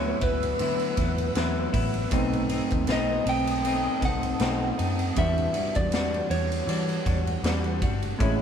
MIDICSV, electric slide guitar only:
0, 0, Header, 1, 2, 480
1, 0, Start_track
1, 0, Tempo, 759398
1, 1343, Time_signature, 4, 2, 24, 8
1, 5321, End_track
2, 0, Start_track
2, 0, Title_t, "Electric slide guitar"
2, 0, Program_c, 0, 29
2, 0, Note_on_c, 0, 73, 99
2, 147, Note_on_c, 0, 71, 80
2, 156, Note_off_c, 0, 73, 0
2, 840, Note_off_c, 0, 71, 0
2, 1847, Note_on_c, 0, 75, 101
2, 2080, Note_on_c, 0, 79, 107
2, 2082, Note_off_c, 0, 75, 0
2, 2559, Note_off_c, 0, 79, 0
2, 2561, Note_on_c, 0, 78, 102
2, 3276, Note_on_c, 0, 76, 90
2, 3293, Note_off_c, 0, 78, 0
2, 3640, Note_on_c, 0, 74, 89
2, 3652, Note_off_c, 0, 76, 0
2, 3985, Note_off_c, 0, 74, 0
2, 3987, Note_on_c, 0, 73, 84
2, 4680, Note_off_c, 0, 73, 0
2, 5321, End_track
0, 0, End_of_file